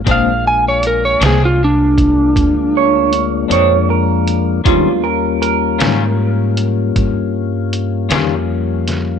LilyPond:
<<
  \new Staff \with { instrumentName = "Electric slide guitar" } { \time 12/8 \key bes \mixolydian \tempo 4. = 52 f''8 aes''16 des''16 bes'16 des''16 aes'16 f'16 d'2 r2 | r1. | }
  \new Staff \with { instrumentName = "Clean electric guitar" } { \time 12/8 \key bes \mixolydian r2. r8 des''4 des''8 bes'4 | f'8 bes'8 bes'2 r2. | }
  \new Staff \with { instrumentName = "Tonewheel organ" } { \time 12/8 \key bes \mixolydian <aes bes d' f'>1. | <ges aes ces' d'>8 <g bes des' f'>1~ <g bes des' f'>4. | }
  \new Staff \with { instrumentName = "Clean electric guitar" } { \time 12/8 \key bes \mixolydian <bes, aes c' d'>8 r4 <bes, aes c' d'>8 r2 r8 <bes, aes c' d'>8 r4 | <ees g des' f'>8 r4 <ees g des' f'>8 r2 r8 <ees g des' f'>8 r4 | }
  \new Staff \with { instrumentName = "Upright bass" } { \clef bass \time 12/8 \key bes \mixolydian bes,,4. c,4. d,4. f,4. | ees,4. aes,4. g,4. f,4. | }
  \new DrumStaff \with { instrumentName = "Drums" } \drummode { \time 12/8 <hh bd>4 hh8 <hh sn>4 <hh bd>8 <hh bd>4 hh8 hh4 hh8 | <hh bd>4 hh8 <hh sn>4 hh8 <hh bd>4 hh8 <hh sn>4 <hh sn>8 | }
>>